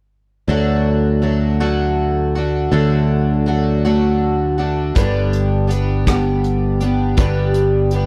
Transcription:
0.48 D2 D3 F#3 A3 D4 F#4
1.22 F#3 A3 D4 F#4
1.60 D3 F#3 A3 D4 F#4
2.35 A3 D4 F#4
2.72 D2 D3 F#3 A3 D4 F#4
3.46 F#3 A3 D4 F#4
3.85 D3 F#3 A3 D4 F#4
4.58 A3 D4 F#4
4.95 G1 G2 D3 G3 B3 D4 G4, kick, closed hi-hat
5.33 closed hi-hat
5.67 G3 B3 D4 G4, closed hi-hat
6.07 G2 D3 G3 B3 D4 G4, kick, cross-stick, closed hi-hat
6.44 closed hi-hat
6.80 G3 B3 D4 G4, closed hi-hat
7.17 G1 G2 D3 G3 B3 D4 G4, kick, closed hi-hat
7.54 closed hi-hat
7.91 G3 B3, closed hi-hat
7.95 D4 G4

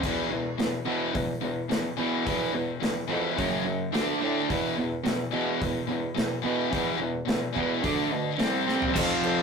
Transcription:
0.03 E2 B2 E3, kick, open hi-hat, crash
0.31 E2 B2
0.58 E2 B2, snare, open hi-hat
0.85 E2 B2 E3
1.13 E2 B2, kick, open hi-hat
1.41 E2 B2
1.69 E2 B2, snare, open hi-hat
1.97 E2 B2 E3
2.25 E2 B2 E3, kick, open hi-hat
2.52 E2 B2
2.80 E2 B2, snare, open hi-hat
3.08 E2 F2 B2 E3
3.35 F#2 C#3 F#3, kick, open hi-hat
3.63 F#2 C#3
3.92 D2 D3 A3 D4, snare, open hi-hat
4.19 A2 D3 A3 D4
4.47 E2 B2 E3, kick, open hi-hat
4.75 E2 B2
5.04 E2 B2, snare, open hi-hat
5.31 E2 B2 E3
5.60 E2 B2, kick, open hi-hat
5.87 E2 B2
6.14 E2 B2, snare, open hi-hat
6.42 E2 B2 E3
6.71 E2 B2 E3, kick, open hi-hat
6.98 E2 B2
7.25 E2 B2, open hi-hat
7.29 snare
7.53 E2 B2 E3, kick
7.57 E2
7.82 D2 D3 A3 D4, kick, open hi-hat
8.11 B2 D3 A3
8.39 C2 C3 G3 C4, snare, open hi-hat
8.66 C3 G3 C4, snare
8.82 floor tom
8.93 F2 C3 F3 F5, kick, crash
9.23 F2, crash

